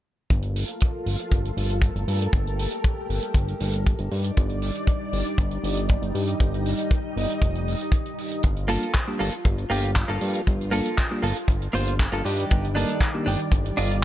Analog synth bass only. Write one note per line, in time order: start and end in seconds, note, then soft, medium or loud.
0.30 0.64 G1 medium
1.06 1.17 G1 medium
1.32 1.52 G1 medium
1.57 1.91 G1 medium
1.96 2.05 G1 medium
2.08 2.28 G2 medium
2.33 2.67 G1 medium
3.10 3.20 G1 medium
3.34 3.55 G1 medium
3.61 3.94 G1 medium
3.99 4.09 G1 medium
4.11 4.31 G2 medium
4.37 4.71 G1 medium
5.13 5.23 G1 medium
5.38 5.58 G1 medium
5.64 5.98 G1 medium
6.02 6.12 G1 medium
6.15 6.35 G2 medium
6.40 6.74 G1 medium
7.16 7.27 G1 medium
7.42 7.76 F1 medium
8.44 8.78 G1 loud
9.20 9.30 G1 medium
9.45 9.65 G1 medium
9.71 10.05 G1 medium
10.09 10.19 G1 medium
10.21 10.41 G2 medium
10.47 10.81 G1 loud
11.23 11.33 G1 medium
11.48 11.68 G1 medium
11.74 12.08 G1 medium
12.13 12.22 G1 medium
12.25 12.45 G2 medium
12.51 12.85 G1 loud
13.27 13.37 G1 medium
13.52 13.72 G1 medium
13.78 14.04 G1 medium